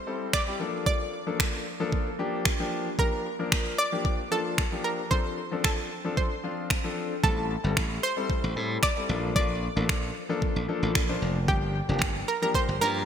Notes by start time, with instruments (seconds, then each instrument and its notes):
0.07 grand piano G3 C4 E4 A4
0.33 synth pluck D5, finger snap, kick
0.47 grand piano G3 C4 E4 G4
0.60 grand piano F3 A#3 D4 A4
0.86 synth pluck D5, kick
1.27 grand piano F3 A#3 D4 A4
1.40 finger snap, kick
1.80 grand piano F3 A#3 D4 A4
1.92 kick
2.19 grand piano F3 A#3 D4 G4
2.45 finger snap, kick
2.59 grand piano F3 A#3 D4 G4
2.98 grand piano F3 A#3 D4 G4, synth pluck A#4, kick
3.39 grand piano F3 A#3 D4 A#4
3.52 finger snap, kick
3.78 synth pluck D5
3.92 grand piano F3 A#3 D4 G4
4.05 kick
4.31 grand piano F3 A#3 D4 F4, synth pluck A4
4.58 finger snap, kick
4.72 grand piano F3 A#3 D4 G4
4.84 synth pluck A#4
5.11 grand piano F3 C4 D4 A4, synth pluck C5, kick
5.51 grand piano F3 C4 D4 A4
5.64 synth pluck A4, finger snap, kick
6.04 grand piano F3 C4 D4 A4
6.17 synth pluck C5, kick
6.43 grand piano F3 C4 D4 F4
6.70 finger snap, kick
6.84 grand piano F3 C4 D4 A4
7.23 slap bass A1, grand piano G3 C4 E4 A4, synth pluck A4, kick
7.63 slap bass G1, grand piano G3 C4 E4 A4
7.77 slap bass A1, finger snap, kick
8.03 synth pluck C5
8.17 grand piano G3 C4 E4 A4
8.30 kick
8.44 slap bass A1
8.56 slap bass A2, grand piano G3 C4 E4 A4
8.83 synth pluck D5, finger snap, kick
8.96 grand piano G3 C4 E4 A4
9.09 slap bass A#1, grand piano F3 A#3 D4 A4
9.36 slap bass A#1, synth pluck D5, kick
9.76 slap bass A1, grand piano F3 A#3 D4 A4
9.89 slap bass A#1, finger snap, kick
10.29 grand piano F3 A#3 D4 A4
10.42 kick
10.56 slap bass A#1
10.68 grand piano F3 A#3 D4 A4
10.83 slap bass A1
10.95 slap bass A#1, finger snap, kick
11.09 grand piano F3 A#3 D4 C5
11.22 slap bass F1
11.48 slap bass G1, grand piano F3 A#3 D4 G4, synth pluck G4, kick
11.89 slap bass F1, grand piano F3 A#3 D4 G4
12.02 slap bass G1, finger snap, kick
12.28 synth pluck A#4
12.42 grand piano F3 A#3 D4 G4, synth pluck A#4
12.55 synth pluck C5, kick
12.69 slap bass G1
12.81 slap bass G2, grand piano F3 A#3 D4 G4, synth pluck A#4